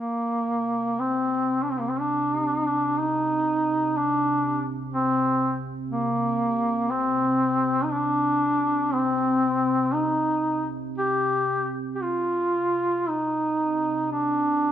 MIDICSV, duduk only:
0, 0, Header, 1, 2, 480
1, 0, Start_track
1, 0, Key_signature, -3, "minor"
1, 0, Tempo, 1003344
1, 1424, Time_signature, 3, 2, 24, 8
1, 1900, Tempo, 970874
1, 3340, Tempo, 1013514
1, 4780, Tempo, 1039861
1, 6993, End_track
2, 0, Start_track
2, 0, Title_t, "Duduk"
2, 0, Program_c, 0, 69
2, 0, Note_on_c, 0, 58, 70
2, 476, Note_on_c, 0, 60, 72
2, 483, Note_off_c, 0, 58, 0
2, 779, Note_on_c, 0, 62, 52
2, 786, Note_off_c, 0, 60, 0
2, 821, Note_on_c, 0, 60, 50
2, 828, Note_off_c, 0, 62, 0
2, 861, Note_on_c, 0, 58, 57
2, 868, Note_off_c, 0, 60, 0
2, 906, Note_on_c, 0, 60, 57
2, 913, Note_off_c, 0, 58, 0
2, 957, Note_on_c, 0, 62, 72
2, 964, Note_off_c, 0, 60, 0
2, 1433, Note_on_c, 0, 63, 87
2, 1440, Note_off_c, 0, 62, 0
2, 1901, Note_on_c, 0, 62, 80
2, 1908, Note_off_c, 0, 63, 0
2, 2256, Note_off_c, 0, 62, 0
2, 2376, Note_on_c, 0, 60, 87
2, 2710, Note_off_c, 0, 60, 0
2, 2855, Note_on_c, 0, 58, 87
2, 3349, Note_on_c, 0, 60, 81
2, 3356, Note_off_c, 0, 58, 0
2, 3793, Note_on_c, 0, 63, 55
2, 3800, Note_off_c, 0, 60, 0
2, 3831, Note_on_c, 0, 62, 91
2, 3838, Note_off_c, 0, 63, 0
2, 4310, Note_on_c, 0, 60, 85
2, 4317, Note_off_c, 0, 62, 0
2, 4783, Note_on_c, 0, 63, 84
2, 4790, Note_off_c, 0, 60, 0
2, 5134, Note_off_c, 0, 63, 0
2, 5268, Note_on_c, 0, 67, 84
2, 5610, Note_off_c, 0, 67, 0
2, 5716, Note_on_c, 0, 67, 45
2, 5749, Note_on_c, 0, 65, 82
2, 5756, Note_off_c, 0, 67, 0
2, 6242, Note_on_c, 0, 63, 82
2, 6249, Note_off_c, 0, 65, 0
2, 6714, Note_off_c, 0, 63, 0
2, 6716, Note_on_c, 0, 62, 78
2, 6993, Note_off_c, 0, 62, 0
2, 6993, End_track
0, 0, End_of_file